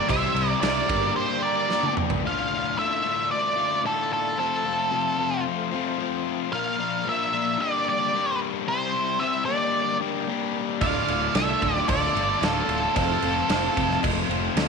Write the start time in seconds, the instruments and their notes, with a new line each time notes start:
0.07 fingered electric bass C2, overdriven electric guitar C3 G3 C4 E4 G4 C5, tonewheel organ C4 E4 G4, reed electric piano G4 C5 E5, lead electric guitar C5 E5, kick, cowbell, crash
0.35 fingered electric bass C2, overdriven electric guitar C4 E4 G4 C5, crash
0.61 fingered electric bass C2, overdriven electric guitar C3 G3 C4 E4 G4 C5, reed electric piano G4 C5 E5, lead electric guitar A#4 D5, snare, cowbell, crash
0.87 fingered electric bass G1, overdriven electric guitar G2 D3 G3 A#3 D4 G4, tonewheel organ A#3 D4 G4 D5, reed electric piano G4, kick, crash
0.91 reed electric piano A#4
1.16 lead electric guitar G4 C5
1.41 overdriven electric guitar G3 A#3 D4 G4, lead electric guitar D5
1.45 lead electric guitar A#4
1.69 overdriven electric guitar G3 A#3 D4 G4, snare
1.83 high tom
1.90 tonewheel organ B3 C4
1.95 tonewheel organ D4 E4, mid tom
2.01 tonewheel organ F4 G4
2.07 tonewheel organ A4 B4, floor tom
2.12 tonewheel organ C5 D5
2.18 tonewheel organ A3 D4 F4 D5 E5
2.23 overdriven electric guitar D2 A2 D3 A3 F4
2.27 lead electric guitar F5
2.51 overdriven electric guitar D3 A3 F4
2.77 overdriven electric guitar D2 A2 D3 A3 F4, lead electric guitar E5
3.02 overdriven electric guitar D3 A3 F4
3.31 lead electric guitar D5
3.56 overdriven electric guitar D3 A3 F4
3.83 overdriven electric guitar A2 D3 A3 F4, lead electric guitar A4
4.13 lead electric guitar A4
4.36 overdriven electric guitar F2 C3 F3 A3 C4 F4, tonewheel organ A3 C4 F4 C5, lead electric guitar A4
4.65 overdriven electric guitar F3 A3 C4 F4
4.91 overdriven electric guitar F2 C3 F3 A3 C4 F4
5.18 overdriven electric guitar F3 A3 C4 F4
5.71 overdriven electric guitar F3 A3 C4 F4
5.98 overdriven electric guitar F3 A3 C4 F4
6.52 overdriven electric guitar A#2 F3 A#3 D4 F4 A#4, tonewheel organ A#3 D4 F4 D5, lead electric guitar F5
6.78 overdriven electric guitar A#3 D4 F4 A#4
7.05 overdriven electric guitar A#2 F3 A#3 D4 F4 A#4, lead electric guitar E5
7.31 overdriven electric guitar A#3 D4 F4 A#4
7.58 overdriven electric guitar G2 D3 G3 A#3 D4 G4, tonewheel organ A#3 D4 G4 D5, lead electric guitar D5
7.85 overdriven electric guitar G3 A#3 D4 G4
7.89 lead electric guitar D5
8.13 overdriven electric guitar G3 A#3 D4 G4
8.66 overdriven electric guitar C3 G3 C4 E4 G4 C5, tonewheel organ C4 E4 G4 E5, lead electric guitar C5
8.93 overdriven electric guitar C4 E4 G4 C5
9.19 overdriven electric guitar C3 G3 C4 E4 G4 C5, lead electric guitar E5
9.45 overdriven electric guitar G2 D3 G3 A#3 D4 G4, tonewheel organ A#3 D4 G4, lead electric guitar D5
10.00 overdriven electric guitar G3 A#3 D4 G4
10.26 overdriven electric guitar G3 A#3 D4 G4
10.81 fingered electric bass D1, overdriven electric guitar D2 A2 D3 A3 F4, tonewheel organ A3 D4 F4 D5, reed electric piano D4 F4 A4 D5, lead electric guitar D5 F5, kick, cowbell, crash
11.08 fingered electric bass D1, overdriven electric guitar D3 A3 F4, crash
11.35 fingered electric bass C2, overdriven electric guitar D2 A2 D3 A3, reed electric piano D4 F4 A4 D5, lead electric guitar A4 E5, snare, cowbell, crash
11.39 overdriven electric guitar F4
11.62 fingered electric bass D1, overdriven electric guitar D3 A3 F4, kick, crash
11.76 snare
11.88 fingered electric bass D1, lead electric guitar A4 D5, kick, cowbell, crash
12.15 fingered electric bass G1, overdriven electric guitar D3 A3 F4, crash
12.41 fingered electric bass D1, overdriven electric guitar A2 D3 A3 F4, lead electric guitar F4 A4, snare, cowbell, crash
12.68 fingered electric bass D1, crash
12.95 fingered electric bass F1, overdriven electric guitar F2 C3 F3 A3 C4 F4, tonewheel organ A3 C4 F4 C5, reed electric piano C4 F4 A4 C5, lead electric guitar F4 A4, kick, cowbell, crash
13.22 fingered electric bass F1, overdriven electric guitar F3 A3 C4 F4, crash
13.48 fingered electric bass F1, overdriven electric guitar F2 C3 F3 A3 C4 F4, reed electric piano C4 F4 A4 C5, snare, cowbell, crash
13.76 fingered electric bass F1, overdriven electric guitar F3 A3 C4 F4, kick, crash
13.91 snare
14.03 fingered electric bass F1, kick, cowbell, crash
14.29 fingered electric bass F1, overdriven electric guitar F3 A3 C4 F4, crash
14.56 fingered electric bass D2, overdriven electric guitar F3 A3 C4, reed electric piano A5, snare, cowbell, crash
14.60 overdriven electric guitar F4